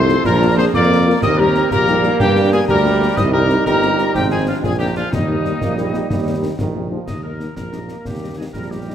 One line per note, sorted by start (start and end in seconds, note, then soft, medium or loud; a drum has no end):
0.00 0.17 C2 loud
0.00 1.05 F3 loud
0.00 0.21 A3 loud
0.00 0.21 A4 loud
0.00 0.21 C5 loud
0.00 0.27 C6 loud
0.08 0.14 F3 loud
0.08 0.14 A3 medium
0.08 0.14 D#4 loud
0.08 snare medium
0.24 0.66 A#1 loud
0.24 2.20 A#3 loud
0.24 0.70 D4 loud
0.24 0.55 F4 loud
0.24 0.55 A#4 loud
0.24 0.58 A#5 loud
0.24 concert bass drum loud
0.24 snare medium
0.41 0.47 F3 medium
0.41 0.47 A#3 medium
0.41 0.47 F4 medium
0.57 0.64 F3 medium
0.57 0.64 A#3 loud
0.57 0.64 F4 medium
0.57 0.72 G#4 loud
0.57 0.64 C5 loud
0.57 0.65 C6 loud
0.73 1.10 F2 loud
0.73 1.19 A#3 loud
0.73 1.21 A#4 loud
0.73 1.20 D5 loud
0.73 1.19 D6 loud
0.73 concert bass drum medium
0.73 snare medium
0.90 0.96 F3 medium
0.90 0.96 A#3 medium
0.90 0.96 F4 medium
1.07 1.13 F3 medium
1.07 1.13 A#3 medium
1.07 1.13 F4 medium
1.22 1.63 D#2 loud
1.22 3.13 G3 loud
1.22 1.72 C4 loud
1.22 1.37 A#4 loud
1.22 1.38 D#5 loud
1.22 1.29 D#6 loud
1.22 concert bass drum medium
1.22 snare medium
1.22 crash soft
1.38 1.45 G3 medium
1.38 1.45 A#3 medium
1.38 1.45 D#4 medium
1.38 1.68 G4 loud
1.38 1.70 A#4 loud
1.38 1.69 A#5 loud
1.55 1.62 G3 medium
1.55 1.61 A#3 medium
1.55 1.62 D#4 medium
1.55 snare medium
1.70 2.12 A#1 loud
1.70 2.68 A#3 loud
1.70 2.16 G4 loud
1.70 2.17 A#4 loud
1.70 2.17 A#5 loud
1.70 concert bass drum medium
1.70 snare medium
1.87 1.94 G3 loud
1.87 1.94 A#3 medium
1.87 1.94 D#4 medium
1.87 snare medium
2.03 2.10 G3 medium
2.03 2.09 A#3 medium
2.03 2.10 D#4 medium
2.03 snare medium
2.19 2.60 G2 loud
2.19 2.50 D4 loud
2.19 3.13 D4 loud
2.19 2.50 G4 loud
2.19 2.50 G5 loud
2.19 concert bass drum loud
2.19 snare medium
2.36 2.42 G3 medium
2.36 2.42 A#3 medium
2.36 2.42 D4 medium
2.52 2.59 G3 medium
2.52 2.59 A#3 medium
2.52 2.59 D4 medium
2.52 2.59 F4 loud
2.52 2.59 G#4 loud
2.52 2.67 G#5 loud
2.68 3.09 D2 loud
2.68 3.63 G3 loud
2.68 3.14 G4 loud
2.68 3.14 A#4 loud
2.68 3.13 A#5 loud
2.68 concert bass drum medium
2.68 snare medium
2.85 2.91 G3 medium
2.85 2.91 A#3 medium
2.85 2.91 D4 medium
3.01 3.07 G3 medium
3.01 3.07 A#3 medium
3.01 3.07 D4 medium
3.15 3.58 C2 loud
3.15 4.10 G3 medium
3.15 4.63 D#4 loud
3.15 3.24 C5 loud
3.15 3.34 D#5 loud
3.15 3.22 D#6 loud
3.15 concert bass drum loud
3.15 snare medium
3.15 crash soft
3.33 3.39 G3 medium
3.33 3.39 C4 medium
3.33 3.39 D#4 medium
3.33 3.64 G4 loud
3.33 3.64 A#4 loud
3.33 3.63 A#5 loud
3.49 3.55 G3 medium
3.49 3.55 C4 medium
3.49 3.55 D#4 medium
3.49 snare medium
3.66 4.07 G1 loud
3.66 4.12 G3 loud
3.66 4.11 G4 loud
3.66 4.11 A#4 loud
3.66 4.11 A#5 loud
3.66 concert bass drum medium
3.66 snare medium
3.82 3.88 G3 medium
3.82 3.88 C4 medium
3.82 3.88 D#4 medium
3.82 snare medium
3.98 4.04 G3 medium
3.98 4.04 C4 medium
3.98 4.04 D#4 medium
3.98 snare medium
4.13 4.55 G#1 loud
4.13 5.11 F3 medium
4.13 4.65 C4 loud
4.13 4.30 D#4 loud
4.13 4.22 G4 loud
4.13 4.30 G5 loud
4.13 concert bass drum loud
4.13 snare medium
4.31 4.37 F3 medium
4.31 4.37 C4 medium
4.31 4.37 D#4 medium
4.31 4.39 F4 medium
4.31 4.46 G#4 loud
4.31 4.46 G#5 medium
4.47 4.54 F3 medium
4.47 4.54 C4 medium
4.47 4.63 D4 medium
4.47 4.53 D#4 medium
4.47 4.54 F4 loud
4.47 4.53 F5 loud
4.63 5.04 A#1 loud
4.63 5.12 F3 loud
4.63 5.12 D4 medium
4.63 4.71 F4 loud
4.63 4.71 G#4 loud
4.63 4.78 G#5 loud
4.63 concert bass drum medium
4.63 snare medium
4.79 4.86 F3 medium
4.79 4.86 A#3 medium
4.79 4.86 D4 medium
4.79 4.95 D#4 medium
4.79 4.94 G4 loud
4.79 4.86 G5 medium
4.96 5.02 F3 medium
4.96 5.02 A#3 medium
4.96 5.02 D4 medium
4.96 5.04 D4 medium
4.96 5.11 F4 loud
4.96 5.03 F5 medium
5.10 5.53 D#2 medium
5.10 6.86 G3 medium
5.10 5.55 G3 medium
5.10 6.55 A#3 medium
5.10 6.86 D#4 medium
5.10 6.54 D#4 loud
5.10 6.55 D#5 medium
5.10 concert bass drum loud
5.10 snare medium
5.10 crash soft
5.29 5.34 G3 medium
5.29 5.35 A#3 medium
5.29 5.35 D#4 medium
5.45 5.51 G3 medium
5.45 5.51 A#3 medium
5.45 5.51 D#4 medium
5.45 snare medium
5.61 6.02 A#1 medium
5.61 5.76 A#3 loud
5.61 concert bass drum medium
5.61 snare medium
5.77 5.83 G3 medium
5.77 6.08 G3 medium
5.77 5.83 A#3 medium
5.77 5.83 D#4 medium
5.77 snare medium
5.94 6.00 G3 medium
5.94 6.00 A#3 medium
5.94 6.00 D#4 medium
5.94 snare medium
6.10 6.51 D#2 loud
6.10 6.46 G3 loud
6.10 concert bass drum medium
6.10 snare medium
6.26 6.32 G3 medium
6.26 6.32 A#3 medium
6.26 6.32 D#4 medium
6.42 6.48 G3 medium
6.42 6.48 A#3 medium
6.42 6.48 D#4 medium
6.59 6.99 A#1 medium
6.59 6.89 D#3 loud
6.59 concert bass drum medium
6.59 snare medium
6.74 6.80 G3 medium
6.74 6.81 A#3 medium
6.74 6.80 D#4 medium
6.91 7.06 F3 medium
6.91 6.97 G3 medium
6.91 6.97 A#3 medium
6.91 6.97 D#4 medium
7.07 7.48 D#2 medium
7.07 7.22 D#5 medium
7.07 concert bass drum medium
7.07 snare medium
7.07 crash soft
7.23 7.30 G3 soft
7.23 7.30 A#3 soft
7.23 7.30 D#4 soft
7.23 7.30 G4 soft
7.23 7.54 A#4 medium
7.23 7.30 D#5 soft
7.40 7.46 G3 soft
7.40 7.46 A#3 soft
7.40 7.46 D#4 soft
7.40 7.46 G4 soft
7.40 7.46 D#5 soft
7.40 snare soft
7.56 7.93 A#1 medium
7.56 8.50 A#3 medium
7.56 8.02 A#4 medium
7.56 concert bass drum medium
7.56 snare medium
7.72 7.78 G3 soft
7.72 7.78 A#3 soft
7.72 7.78 D#4 soft
7.72 7.79 G4 soft
7.72 7.79 D#5 soft
7.72 snare soft
7.89 7.95 G3 soft
7.89 7.95 A#3 soft
7.89 7.95 D#4 soft
7.89 7.96 G4 soft
7.89 7.96 D#5 soft
7.89 snare soft
8.05 8.46 D#2 medium
8.05 8.38 G4 medium
8.05 concert bass drum medium
8.05 snare medium
8.22 8.27 G3 soft
8.22 8.27 A#3 soft
8.22 8.27 D#4 soft
8.22 8.28 G4 soft
8.22 8.28 D#5 soft
8.37 8.44 G3 soft
8.37 8.44 A#3 soft
8.37 8.44 D#4 soft
8.37 8.45 G4 soft
8.37 8.44 G#4 medium
8.37 8.44 D#5 soft
8.54 8.95 A#1 medium
8.54 8.95 G3 medium
8.54 8.69 A#4 medium
8.54 concert bass drum medium
8.54 snare medium
8.70 8.76 G3 soft
8.70 8.76 A#3 soft
8.70 8.76 D#4 soft
8.70 8.95 G4 medium
8.70 8.76 G4 soft
8.70 8.77 D#5 soft
8.87 8.93 G3 soft
8.87 8.93 A#3 soft
8.87 8.93 D#4 soft
8.87 8.92 G4 soft
8.87 8.92 D#5 soft